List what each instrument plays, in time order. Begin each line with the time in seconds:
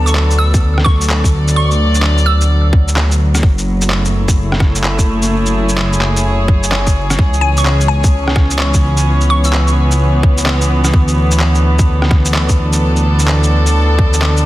Already playing: detuned saw bass D2, string section F#3 B3 D4 A4
0.06 synth pluck C#6, shaker
0.15 clap
0.31 shaker
0.39 synth pluck E6
0.54 kick, shaker
0.78 cross-stick
0.84 synth pluck C#6, kick, cross-stick
0.98 string section D5, shaker
1.09 clap
1.24 kick, shaker
1.48 shaker
1.56 synth pluck C#6
1.71 shaker
1.95 shaker
2.02 clap
2.18 shaker
2.26 synth pluck E6
2.41 shaker
2.73 kick
2.88 shaker
2.96 cross-stick, clap
3.12 shaker
3.35 cross-stick, shaker
3.43 detuned saw bass F#1, kick
3.58 shaker
3.80 string section A3 E4, shaker
3.90 string section C#5, clap
4.05 shaker
4.26 string section G#4, kick, shaker
4.52 cross-stick
4.60 kick, cross-stick
4.75 shaker
4.84 clap
4.99 kick, shaker
5.22 shaker
5.46 shaker
5.69 shaker
5.78 clap
5.93 shaker
6.01 clap
6.17 shaker
6.48 kick
6.63 shaker
6.72 cross-stick, clap
6.87 kick, shaker
7.10 cross-stick, shaker
7.18 detuned saw bass C#2, string section E3, kick
7.33 shaker
7.41 string section C#4, synth pluck G#5
7.50 string section B3
7.57 synth pluck C#6, shaker
7.65 clap
7.81 shaker
7.88 synth pluck G#5
8.04 kick, shaker
8.27 cross-stick
8.36 kick, cross-stick
8.51 shaker
8.59 clap
8.74 kick, shaker
8.97 shaker
9.21 shaker
9.30 synth pluck C#6
9.44 synth pluck E6, shaker
9.53 clap
9.68 shaker
9.91 shaker
10.23 kick
10.38 shaker
10.46 cross-stick, clap
10.61 shaker
10.84 cross-stick, shaker
10.94 detuned saw bass D2, kick
11.08 shaker
11.31 shaker
11.40 clap
11.55 string section D4 A4, shaker
11.79 kick, shaker
12.02 cross-stick
12.11 kick, cross-stick
12.25 shaker
12.34 clap
12.49 kick, shaker
12.73 shaker
12.96 shaker
13.19 shaker
13.28 clap
13.43 shaker
13.66 shaker
13.98 kick
14.14 shaker
14.22 cross-stick, clap
14.37 shaker